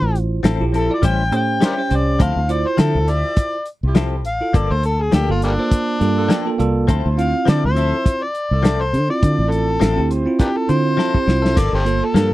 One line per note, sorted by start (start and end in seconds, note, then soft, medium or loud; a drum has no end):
0.00 0.42 A1 medium
0.00 0.51 E4 medium
0.00 0.52 F4 medium
0.00 0.52 C5 medium
0.00 0.15 D5 medium
0.15 closed hi-hat medium
0.43 0.60 A1 medium
0.43 0.63 F3 medium
0.43 0.63 C4 medium
0.43 0.64 E4 medium
0.43 0.64 A4 loud
0.43 snare loud
0.43 closed hi-hat medium
0.60 0.89 A#1 medium
0.60 0.87 E4 medium
0.60 0.87 F4 medium
0.60 0.87 G4 medium
0.72 0.92 F3 medium
0.72 0.93 C4 medium
0.72 0.93 E4 medium
0.72 0.94 A4 medium
0.72 closed hi-hat medium
0.77 0.90 A4 medium
0.89 1.03 E4 medium
0.89 1.03 F4 medium
0.89 1.04 D5 medium
0.93 1.07 D5 medium
1.02 1.32 A1 medium
1.02 1.21 G3 medium
1.02 1.22 C#4 medium
1.02 1.22 E4 medium
1.02 1.23 C5 medium
1.02 1.33 G5 medium
1.02 kick medium
1.02 closed hi-hat medium
1.31 1.60 A2 medium
1.31 1.73 C#4 medium
1.31 1.73 G4 medium
1.31 1.74 C5 medium
1.31 closed hi-hat medium
1.36 1.63 G5 medium
1.61 1.80 G3 medium
1.61 1.81 C#4 medium
1.61 1.81 E4 medium
1.61 1.81 C5 medium
1.61 snare medium
1.61 closed hi-hat medium
1.65 1.73 A#4 medium
1.65 1.74 D5 medium
1.65 1.97 G5 medium
1.77 1.89 C#4 medium
1.77 1.90 G4 medium
1.77 1.90 C5 medium
1.90 2.19 C2 medium
1.90 2.20 C#4 medium
1.90 2.20 G4 medium
1.90 2.20 C5 medium
1.90 closed hi-hat medium
1.95 2.21 D5 medium
2.19 2.35 D2 medium
2.19 2.39 F3 medium
2.19 2.39 C4 medium
2.19 2.66 C4 medium
2.19 2.66 E4 medium
2.19 2.39 E4 medium
2.19 2.66 F4 medium
2.19 2.40 A4 medium
2.19 2.66 C5 medium
2.19 2.53 F5 medium
2.19 kick loud
2.19 closed hi-hat medium
2.36 2.64 D2 medium
2.48 3.56 E4 medium
2.48 3.56 F4 medium
2.48 3.57 C5 medium
2.48 2.69 D5 medium
2.48 closed hi-hat medium
2.67 2.81 C5 medium
2.77 2.96 D3 medium
2.77 2.97 F3 medium
2.77 2.97 C4 medium
2.77 2.98 E4 medium
2.77 3.11 A4 medium
2.77 2.98 A4 medium
2.77 snare loud
2.77 closed hi-hat medium
2.95 3.23 D2 medium
3.08 3.46 F3 medium
3.08 3.45 E4 medium
3.08 3.46 G4 medium
3.08 3.66 D5 medium
3.08 3.45 E5 medium
3.08 closed hi-hat medium
3.36 kick medium
3.36 closed hi-hat medium
3.66 closed hi-hat soft
3.83 4.25 C2 medium
3.83 4.20 G3 medium
3.83 4.19 E4 medium
3.83 4.20 F4 medium
3.83 4.20 G4 medium
3.95 4.14 F3 medium
3.95 4.15 C4 medium
3.95 4.15 E4 medium
3.95 4.15 A4 medium
3.95 snare loud
3.95 closed hi-hat medium
4.25 4.40 A1 medium
4.25 4.58 F5 medium
4.25 closed hi-hat medium
4.41 4.54 E4 medium
4.41 4.54 F4 medium
4.41 4.55 A4 medium
4.53 4.70 G1 medium
4.53 4.73 F3 medium
4.53 5.01 A3 medium
4.53 4.99 A#3 medium
4.53 4.73 A#3 medium
4.53 4.74 D4 medium
4.53 5.00 F4 medium
4.53 5.01 A4 medium
4.53 4.74 A4 medium
4.53 4.73 D5 medium
4.53 kick loud
4.53 closed hi-hat medium
4.71 5.11 D2 medium
4.71 4.83 C5 medium
4.83 5.03 A4 medium
4.83 closed hi-hat medium
5.02 5.13 G#4 medium
5.12 5.29 D2 medium
5.12 5.31 F3 medium
5.12 5.32 A#3 medium
5.12 5.32 D4 medium
5.12 5.29 G4 medium
5.12 5.33 A4 medium
5.12 snare loud
5.12 closed hi-hat medium
5.29 5.57 G1 medium
5.29 5.55 A#3 medium
5.29 5.55 F4 medium
5.29 5.42 F4 medium
5.29 5.56 A4 medium
5.41 5.51 G3 medium
5.41 5.80 A3 medium
5.41 5.79 A#3 medium
5.41 5.52 A#3 medium
5.41 6.57 D4 loud
5.41 5.80 F4 medium
5.41 5.80 A4 medium
5.41 closed hi-hat medium
5.58 5.97 A#3 medium
5.58 5.97 F4 medium
5.58 5.97 C5 medium
5.71 kick medium
5.71 closed hi-hat medium
6.00 6.29 G2 medium
6.00 6.41 A#3 medium
6.00 6.42 F4 medium
6.00 6.42 A4 medium
6.00 closed hi-hat medium
6.16 6.53 A3 medium
6.16 6.52 A#3 medium
6.16 6.52 F4 medium
6.16 6.53 A4 medium
6.29 6.48 F3 medium
6.29 6.49 A#3 medium
6.29 6.49 D4 loud
6.29 6.49 A4 loud
6.29 6.57 G5 medium
6.29 snare loud
6.29 closed hi-hat medium
6.45 6.57 A#3 medium
6.45 6.58 F4 medium
6.45 6.58 A4 medium
6.58 6.87 C2 medium
6.58 6.88 A#3 medium
6.58 6.89 F4 medium
6.58 6.89 A4 loud
6.58 6.87 D5 medium
6.58 closed hi-hat medium
6.87 7.04 D2 medium
6.87 7.07 F3 medium
6.87 7.07 C4 medium
6.87 7.35 C4 medium
6.87 7.33 E4 medium
6.87 7.08 E4 medium
6.87 7.34 F4 medium
6.87 7.08 A4 medium
6.87 7.35 C5 medium
6.87 kick loud
6.87 closed hi-hat medium
7.06 7.33 D2 medium
7.17 8.24 C4 medium
7.17 8.25 E4 medium
7.17 8.25 F4 medium
7.17 7.47 F5 medium
7.17 closed hi-hat medium
7.46 7.66 D3 medium
7.46 7.65 F3 medium
7.46 7.66 C4 medium
7.46 7.66 E4 medium
7.46 7.66 A4 medium
7.46 7.63 D5 medium
7.46 snare loud
7.46 closed hi-hat medium
7.64 7.92 D2 medium
7.64 8.24 C5 medium
7.75 7.95 F3 soft
7.75 8.14 F3 medium
7.75 7.95 C4 medium
7.75 8.14 E4 medium
7.75 7.96 E4 medium
7.75 7.96 A4 medium
7.75 8.15 C5 medium
7.75 8.14 E5 medium
7.75 closed hi-hat medium
8.06 kick medium
8.06 closed hi-hat medium
8.23 8.83 D5 medium
8.35 closed hi-hat medium
8.51 8.95 C2 medium
8.51 8.88 A3 medium
8.51 8.87 E4 medium
8.51 8.87 F4 medium
8.51 8.88 A4 medium
8.63 8.82 F3 medium
8.63 8.83 C4 medium
8.63 8.83 E4 medium
8.63 8.84 A4 medium
8.63 snare loud
8.63 closed hi-hat medium
8.81 9.09 C5 medium
8.93 9.09 D3 medium
8.93 closed hi-hat medium
9.09 9.87 C4 medium
9.09 9.88 E4 medium
9.09 9.88 F4 medium
9.09 9.53 D5 medium
9.23 9.38 D3 medium
9.23 9.68 F3 medium
9.23 9.69 D4 medium
9.23 9.69 D5 medium
9.23 kick medium
9.23 closed hi-hat medium
9.39 9.79 A1 medium
9.52 10.08 A4 medium
9.52 closed hi-hat medium
9.80 9.97 A1 medium
9.80 9.99 F3 medium
9.80 10.00 C4 medium
9.80 10.00 E4 medium
9.80 10.01 A4 medium
9.80 snare loud
9.80 closed hi-hat medium
9.96 10.26 D2 medium
9.96 10.23 C4 medium
9.96 10.23 E4 medium
9.96 10.24 G4 medium
10.10 10.48 C4 medium
10.10 10.47 E4 medium
10.10 10.48 F4 medium
10.10 10.48 C5 medium
10.10 closed hi-hat medium
10.26 10.65 C4 medium
10.26 10.65 E4 medium
10.26 10.65 F4 medium
10.39 10.47 A#3 medium
10.39 10.49 D4 medium
10.39 10.58 G4 medium
10.39 kick medium
10.39 closed hi-hat medium
10.57 10.71 A4 medium
10.68 10.97 D3 medium
10.68 11.09 C4 medium
10.68 11.09 E4 medium
10.68 11.10 F4 medium
10.68 11.60 C5 loud
10.68 closed hi-hat medium
10.84 11.21 C4 medium
10.84 11.20 E4 medium
10.84 11.21 F4 medium
10.84 11.21 C5 medium
10.97 11.17 F3 medium
10.97 11.17 C4 medium
10.97 11.17 E4 medium
10.97 11.18 A4 medium
10.97 snare medium
11.13 11.25 C4 medium
11.13 11.26 E4 medium
11.13 11.26 G4 medium
11.13 kick medium
11.26 11.55 C2 medium
11.26 11.56 C4 medium
11.26 11.56 E4 medium
11.26 11.57 F4 medium
11.26 snare medium
11.42 11.56 C4 soft
11.42 11.57 E4 soft
11.42 11.56 A4 medium
11.42 snare medium
11.55 11.72 G1 medium
11.55 11.75 F3 medium
11.55 12.03 A3 medium
11.55 11.75 A#3 medium
11.55 12.02 A#3 medium
11.55 11.76 D4 medium
11.55 12.03 F4 medium
11.55 11.76 A4 medium
11.55 12.03 A4 medium
11.55 11.73 D5 medium
11.55 kick loud
11.55 closed hi-hat medium
11.55 crash medium
11.73 12.01 G1 medium
11.73 11.84 G4 medium
11.73 11.82 A4 medium
11.73 12.06 C5 medium
11.85 12.34 A#3 medium
11.85 12.34 F4 medium
11.85 12.34 A4 medium
11.85 closed hi-hat medium
12.04 12.34 A4 medium
12.14 12.33 G2 medium
12.14 12.34 F3 medium
12.14 12.34 A#3 medium
12.14 12.34 D4 medium
12.14 12.34 A4 medium
12.14 snare loud
12.14 closed hi-hat medium